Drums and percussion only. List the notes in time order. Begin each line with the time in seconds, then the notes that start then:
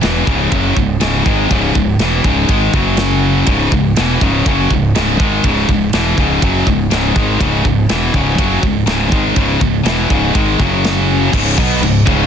0.03 snare, ride bell
0.27 kick
0.52 kick, ride bell
0.77 kick
1.01 snare, ride bell
1.26 kick
1.51 kick, ride bell
1.75 kick
1.99 snare, ride bell
2.24 kick
2.49 kick, ride bell
2.74 kick
2.97 snare, ride bell
3.47 kick, ride bell
3.72 kick
3.96 snare, ride bell
4.21 kick
4.46 kick, ride bell
4.71 kick
4.95 snare, ride bell
5.20 kick
5.44 kick, ride bell
5.69 kick
5.93 snare, ride bell
6.18 kick
6.42 kick, ride bell
6.67 kick
6.91 snare, ride bell
7.16 kick
7.41 kick, ride bell
7.65 kick
7.89 snare, ride bell
8.14 kick
8.38 kick, ride bell
8.63 kick
8.87 snare, ride bell
9.12 kick
9.36 kick, ride bell
9.61 kick
9.86 snare, ride bell
10.10 kick
10.35 kick, ride bell
10.60 kick
10.84 snare, ride bell
11.33 kick, crash
11.58 kick
11.83 crash
12.07 kick